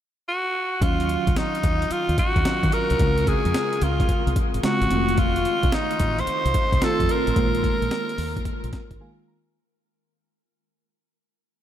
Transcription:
0.28 F#4
0.81 D#2 D#3 F#3 C#4 F4, kick, closed hi-hat
1.00 closed hi-hat
1.09 closed hi-hat
1.27 C#2, kick, closed hi-hat
1.36 D#4, snare, closed hi-hat
1.55 closed hi-hat
1.63 D#2, kick, closed hi-hat
1.82 closed hi-hat
1.91 F4, muted fingered electric bass stroke, closed hi-hat
2.09 D#2, closed hi-hat
2.18 F#4, kick, closed hi-hat
2.36 D#2, kick, closed hi-hat
2.45 D#3 F#3 C#4 F4, snare, closed hi-hat
2.63 D#3, kick, closed hi-hat
2.72 A#4, closed hi-hat
2.90 C2, closed hi-hat
2.99 C#2 C#3 G#3 C4 F4, kick, closed hi-hat
3.18 closed hi-hat
3.27 G#4, kick, closed hi-hat
3.45 F2, closed hi-hat
3.54 snare, closed hi-hat
3.73 closed hi-hat
3.81 C#2 F4, closed hi-hat
4.00 kick, closed hi-hat
4.09 muted fingered electric bass stroke, kick, closed hi-hat
4.27 C2, closed hi-hat
4.36 kick, closed hi-hat
4.54 G#1, closed hi-hat
4.63 C#3 G#3 C4 F4 F#4, muted fingered electric bass stroke, snare, closed hi-hat
4.81 G#1, closed hi-hat
4.90 F1 D#3 A3 C4 F4, closed hi-hat
5.09 closed hi-hat
5.18 F4, kick, closed hi-hat
5.36 closed hi-hat
5.45 closed hi-hat
5.63 C2, kick, closed hi-hat
5.72 D#4, snare, closed hi-hat
5.91 closed hi-hat
5.99 A1, kick, closed hi-hat
6.19 C5, closed hi-hat
6.27 muted fingered electric bass stroke, closed hi-hat
6.45 C2, closed hi-hat
6.54 kick, closed hi-hat
6.72 C2, kick, closed hi-hat
6.81 D#3 A3 C4 F4 A4, snare, closed hi-hat
7.00 F2, kick, closed hi-hat
7.09 A#4, closed hi-hat
7.27 A1, closed hi-hat
7.36 A#1 D#3 G#3 A#3 F4, kick, closed hi-hat
7.55 closed hi-hat
7.64 kick, closed hi-hat
7.82 A#1, closed hi-hat
7.91 snare, closed hi-hat
8.09 closed hi-hat
8.18 D#2, open hi-hat
8.36 kick, closed hi-hat
8.45 muted fingered electric bass stroke, kick, closed hi-hat
8.64 A#1, closed hi-hat
8.73 kick, snare, closed hi-hat
8.91 G#1, kick, closed hi-hat
9.00 D#3 G#3 A#3 F4 G#5
9.28 A#5

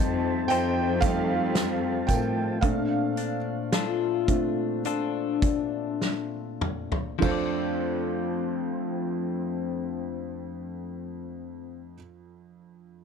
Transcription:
Already playing: F3 G3 A3 C4 D#4 A4 C5 A5
0.00 F2
0.48 F2 D#4 F4 A4 C5 G5, closed hi-hat, tambourine
1.01 G3 A3 D#4 A4 F5, kick, closed hi-hat, tambourine
1.55 snare, closed hi-hat, tambourine
2.07 A2 A#4 G5, kick, closed hi-hat, tambourine
2.61 A#2 A3 C4 D4 A4 F5, kick, closed hi-hat
3.17 D4, closed hi-hat
3.72 D4 F4 A4, snare, closed hi-hat
4.27 A3 C4 D4, kick, closed hi-hat
4.85 D4 F4 A4, closed hi-hat
5.42 kick, closed hi-hat
6.01 snare
6.61 mid tom
6.92 floor tom
7.19 F2 F3 D4 F4, kick, floor tom, crash
7.23 A3 C4 A4 C5
7.29 A4 D5

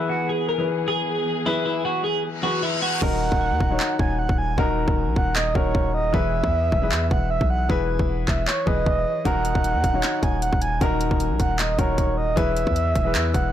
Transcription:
Already playing: E3 B3 E4 G#4 B4
0.09 F#4
0.29 G#4
0.49 A#4
0.58 E3 E4 G#4 B4
0.88 G#4
1.46 E3 E4 G#4 B4
1.65 E4
1.85 F#4
2.04 G#4
2.24 reverse cymbal
2.42 E3 E4 F#4 G#4 B4
2.63 E4
2.82 F#4
3.01 D#1 D#3 D#4 F#4 A#4 F#5, kick, crash
3.32 D#1, kick
3.51 D#2
3.60 D#1, kick
3.70 D#3 D#4 F#4 C#5
3.80 clap
3.99 D#1 G#5, kick
4.19 F#5
4.29 D#1, kick
4.38 G#5
4.57 D#1 D#3 D#4 F#4 A#4, kick
4.88 D#1, kick
5.07 A#1
5.16 D#1 F#5, kick
5.36 D#5, clap
5.54 D#1 D#3 D#4 F#4 A#4 C#5, kick
5.75 D#1, kick
5.94 D#5
6.13 E1 E3 E4 G#4 B4 E5, kick
6.44 E2, kick
6.72 E1, kick
6.82 E3 E4 G#4 B4
6.92 E2, clap
7.11 E1 F#5, kick
7.30 E5
7.41 B1, kick
7.50 F#5
7.69 E1 E3 E4 G#4 B4, kick
7.99 E1, kick
8.28 E1 E5, kick, clap
8.47 C#5, clap
8.66 E1 E3 E4 G#4 B4 D#5, kick
8.86 E1, kick
9.25 D#1 D#3 D#4 F#4 A#4 F#5, kick, closed hi-hat
9.45 closed hi-hat
9.55 D#1, kick
9.64 closed hi-hat
9.75 D#2
9.84 D#1, kick, closed hi-hat
9.93 D#3 D#4 F#4 C#5
10.03 clap, closed hi-hat
10.23 D#1 G#5, kick, closed hi-hat
10.42 F#5, closed hi-hat
10.53 D#1, kick
10.62 G#5, closed hi-hat
10.81 D#1 D#3 D#4 F#4 A#4, kick, closed hi-hat
11.01 closed hi-hat
11.11 D#1, kick
11.20 closed hi-hat
11.30 A#1
11.40 D#1 F#5, kick, closed hi-hat
11.59 D#5, clap, closed hi-hat
11.78 D#1 D#3 D#4 F#4 A#4 C#5, kick, closed hi-hat
11.98 D#1, kick, closed hi-hat
12.18 D#5
12.36 E1 E3 E4 G#4 B4 E5, kick, closed hi-hat
12.57 closed hi-hat
12.67 E2, kick
12.76 closed hi-hat
12.95 E1, kick, closed hi-hat
13.05 E3 E4 G#4 B4
13.15 E2, clap, closed hi-hat
13.34 E1 F#5, kick, closed hi-hat

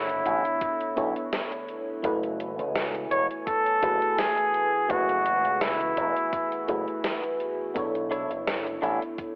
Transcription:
Already playing: F#1 D3 A3 B3 D4 E4 A4 C#5
0.09 closed hi-hat
0.25 A1, kick, closed hi-hat
0.45 closed hi-hat
0.61 kick, closed hi-hat
0.81 closed hi-hat
0.96 B1 B3 D4 E4 A4 C#5, kick, closed hi-hat
1.16 closed hi-hat
1.33 snare, closed hi-hat
1.52 closed hi-hat
1.69 closed hi-hat
2.02 F#1 E3 A3 B3 E4 F#4 A4 B4 G#5, kick, closed hi-hat
2.23 closed hi-hat
2.40 closed hi-hat
2.59 C#2, closed hi-hat
2.76 snare, closed hi-hat
2.95 closed hi-hat
3.11 E1 C#5, closed hi-hat
3.31 closed hi-hat
3.47 A4, kick, closed hi-hat
3.66 closed hi-hat
3.82 F#1 A3 E4 F#4 G#4 B4, kick, closed hi-hat
4.02 closed hi-hat
4.18 G#4, snare, closed hi-hat
4.38 closed hi-hat
4.54 closed hi-hat
4.88 F#1 A3 E4 F#4 G#4 B4, kick, closed hi-hat
5.09 closed hi-hat
5.26 closed hi-hat
5.45 C#2, closed hi-hat
5.61 E4, snare, closed hi-hat
5.81 closed hi-hat
5.97 E1, kick, closed hi-hat
6.16 closed hi-hat
6.33 kick, closed hi-hat
6.52 closed hi-hat
6.68 F#1 A3 E4 F#4 G#4 B4, kick, closed hi-hat
6.88 closed hi-hat
7.04 snare, closed hi-hat
7.23 closed hi-hat
7.40 closed hi-hat
7.74 B1 D3 B3 D4 E4 A4 C#5, kick, closed hi-hat
7.95 closed hi-hat
8.11 D4 E4 A4 C#5, closed hi-hat
8.30 F#1, closed hi-hat
8.47 snare, closed hi-hat
8.67 closed hi-hat
8.82 A1 D4 E4 A4 C#5, closed hi-hat
9.02 closed hi-hat
9.18 kick, closed hi-hat

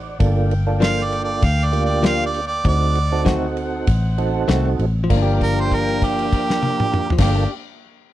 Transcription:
Already playing: A1 D#4 C5 D5 F#5
0.20 G1 A#3 D4 F4 A4 F5 G5, kick, ride
0.51 ride
0.67 A#3 D4 F4 A4
0.80 F3 A#3 D4 F4 F5, snare, ride
1.03 D5
1.12 ride
1.24 D5
1.42 D2 F5, kick, ride
1.65 D5
1.72 A#3 D4 F4 G4, ride
1.85 D5
2.03 F3 A#3 D4 F4 F5, snare, ride
2.26 D5
2.34 ride
2.47 D5
2.64 D2 C4 D#4 F#4 A4 C5 D5 F#5, kick, ride
2.95 ride
3.12 C4 D#4 F#4 A4
3.25 D#3 A3 C4 F#4, kick, snare, ride
3.57 ride
3.87 A1, kick, ride
4.18 C4 D#4 F#4 A4, ride
4.48 C2 D#3 A3 C4 F#4, snare, ride
4.79 A1, ride
5.04 F3
5.09 G1 A#3 D4 F4 A#4 F5 G5, kick, crash
5.17 D4
5.22 G4
5.41 A#4, kick, crash
5.59 C5, crash
5.72 A#4, kick, crash
5.88 crash
6.02 G4, kick, crash
6.19 crash
6.33 kick, crash
6.50 snare
6.63 high tom
6.80 mid tom
6.94 mid tom
7.10 F3, floor tom
7.18 G1 A#3 D4 F4 G4 A4 A#4 F5 G5, kick, snare, crash
7.26 D4
7.31 G4

